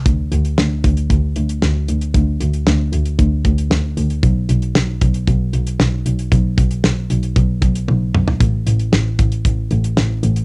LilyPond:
<<
  \new Staff \with { instrumentName = "Double bass" } { \clef bass \time 4/4 \key b \phrygian \tempo 4 = 115 d,8 d,8 d,8 d,8 d,8 d,8 d,8 d,8 | d,8 d,8 d,8 d,8 d,8 d,8 d,8 d,8 | b,,8 b,,8 b,,8 b,,8 b,,8 b,,8 b,,8 b,,8 | b,,8 b,,8 b,,8 b,,8 b,,8 b,,8 b,,8 b,,8 |
a,,8 a,,8 a,,8 a,,8 a,,8 a,,8 a,,8 a,,8 | }
  \new DrumStaff \with { instrumentName = "Drums" } \drummode { \time 4/4 <hh bd>8 hh16 hh16 sn8 <hh bd>16 hh16 <hh bd>8 hh16 hh16 sn8 hh16 hh16 | <hh bd>8 hh16 hh16 sn8 hh16 hh16 <hh bd>8 <hh bd>16 hh16 sn8 hh16 hh16 | <hh bd>8 hh16 hh16 sn8 <hh bd>16 hh16 <hh bd>8 hh16 hh16 sn8 hh16 hh16 | <hh bd>8 <hh bd>16 hh16 sn8 hh16 hh16 <hh bd>8 <hh bd>16 hh16 tommh8 toml16 tomfh16 |
<hh bd>8 hh16 hh16 sn8 <hh bd>16 hh16 <hh bd>8 hh16 hh16 sn8 hh16 hh16 | }
>>